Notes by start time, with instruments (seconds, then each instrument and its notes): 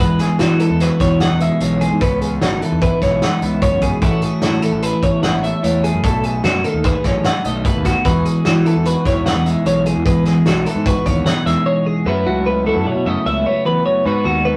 0.00 picked electric bass E2, clean electric guitar E2 G#3 B4
0.19 clean electric guitar G#4, snare, closed hi-hat
0.39 picked electric bass E3, clean electric guitar D#4 F#4, snare, closed hi-hat
0.59 clean electric guitar E3 A4, closed hi-hat
0.70 picked electric bass E2
0.80 clean electric guitar F#4 B4, snare, closed hi-hat
1.00 picked electric bass E2, clean electric guitar B2 C#5, kick, snare, closed hi-hat
1.20 clean electric guitar D#4 F#5, snare, closed hi-hat
1.31 picked electric bass E2
1.40 clean electric guitar G#3 E5, closed hi-hat
1.60 picked electric bass B1, clean electric guitar E2 G#3 C#5, closed hi-hat
1.81 clean electric guitar G#4, closed hi-hat
1.92 picked electric bass G#2
2.01 picked electric bass C#2, clean electric guitar C#3 B3 B4, kick, closed hi-hat
2.21 clean electric guitar G#4, closed hi-hat
2.42 picked electric bass G#1, clean electric guitar D#4 F#4, snare, closed hi-hat
2.62 clean electric guitar E3 A4, closed hi-hat
2.72 picked electric bass E2
2.82 clean electric guitar E4 B4, kick, closed hi-hat
3.02 picked electric bass B1, clean electric guitar G#2 C#5, kick, snare, closed hi-hat
3.22 clean electric guitar D#4 F#5, snare, closed hi-hat
3.42 picked electric bass C#2, clean electric guitar B3 E5, closed hi-hat
3.62 clean electric guitar C#3 C#5, kick, closed hi-hat
3.72 picked electric bass F#2
3.82 clean electric guitar B2 G#4, kick, closed hi-hat
4.02 picked electric bass A1, clean electric guitar A2 E3 A3 C#4 F#4 A4, kick, closed hi-hat
4.22 clean electric guitar G#4, closed hi-hat
4.42 picked electric bass A2, clean electric guitar C#4 F#4, snare, closed hi-hat
4.62 clean electric guitar E3 A4, closed hi-hat
4.72 picked electric bass A1
4.82 clean electric guitar E4 B4, closed hi-hat
5.02 picked electric bass A1, clean electric guitar E2 C#5, kick, closed hi-hat
5.23 clean electric guitar C#4 F#5, snare, closed hi-hat
5.33 picked electric bass A1
5.43 clean electric guitar A3 E5, closed hi-hat
5.63 picked electric bass E2, clean electric guitar A2 A3 C#5, closed hi-hat
5.84 clean electric guitar G#4, closed hi-hat
5.94 picked electric bass F#2
6.03 picked electric bass B1, clean electric guitar B2 A3 A4, kick, closed hi-hat
6.23 clean electric guitar G#4, closed hi-hat
6.44 picked electric bass F#2, clean electric guitar D#4 F#4, snare, closed hi-hat
6.64 clean electric guitar D#3 A4, closed hi-hat
6.74 picked electric bass D#2
6.84 clean electric guitar G#4 B4, kick, snare, closed hi-hat
7.04 picked electric bass A1, clean electric guitar F#2 C#5, kick, snare, closed hi-hat
7.24 clean electric guitar D#4 F#5, snare, closed hi-hat
7.44 picked electric bass B1, clean electric guitar A3 D#5, closed hi-hat
7.65 clean electric guitar B2 A3 B4, kick, closed hi-hat
7.76 picked electric bass D#2
7.85 clean electric guitar F#4, kick, snare, closed hi-hat
8.05 picked electric bass E2, clean electric guitar E2 E3 G#3 D#4 F#4 B4, kick, closed hi-hat
8.25 clean electric guitar G#4, closed hi-hat
8.45 picked electric bass E3, clean electric guitar D#4 F#4, snare, closed hi-hat
8.66 clean electric guitar E3 A4, closed hi-hat
8.76 picked electric bass E2
8.85 clean electric guitar F#4 B4, closed hi-hat
9.05 picked electric bass E2, clean electric guitar B2 C#5, kick, snare, closed hi-hat
9.26 clean electric guitar D#4 F#5, snare, closed hi-hat
9.36 picked electric bass E2
9.46 clean electric guitar G#3 E5, closed hi-hat
9.66 picked electric bass B1, clean electric guitar E2 G#3 C#5, closed hi-hat
9.86 clean electric guitar G#4, closed hi-hat
9.95 picked electric bass E2
10.06 picked electric bass E2, clean electric guitar E2 G#3 B4, kick, closed hi-hat
10.25 clean electric guitar G#4, snare, closed hi-hat
10.46 picked electric bass B1, clean electric guitar D#4 F#4, snare, closed hi-hat
10.66 clean electric guitar E3 A4, closed hi-hat
10.75 picked electric bass G#2
10.86 clean electric guitar F#4 B4, kick, closed hi-hat
11.06 picked electric bass D#2, clean electric guitar B2 C#5, kick, closed hi-hat
11.26 clean electric guitar D#4 F#5, snare, closed hi-hat
11.46 picked electric bass E2, clean electric guitar G#3 E5, snare, closed hi-hat
11.66 clean electric guitar E2 G#3 C#5
11.86 clean electric guitar G#4
12.06 clean electric guitar F#2 F#3 A3 B3 E4 B4, picked electric bass F#2
12.26 picked electric bass C#2, clean electric guitar A3 F#4
12.46 clean electric guitar B4
12.66 clean electric guitar F#3 E4 A4
12.76 picked electric bass F#2
12.85 picked electric bass B2, clean electric guitar C#5
12.95 picked electric bass B2
13.06 picked electric bass F#2, clean electric guitar C#3 A3 D#5
13.26 picked electric bass C#2, clean electric guitar E4 E5
13.46 clean electric guitar B3 C#5
13.65 clean electric guitar E2 B4
13.85 clean electric guitar F#2 C#5
14.05 clean electric guitar G#2 B3 D#4 F#4 B4, picked electric bass G#2
14.25 picked electric bass D#2, clean electric guitar D#4 F#4
14.45 clean electric guitar B4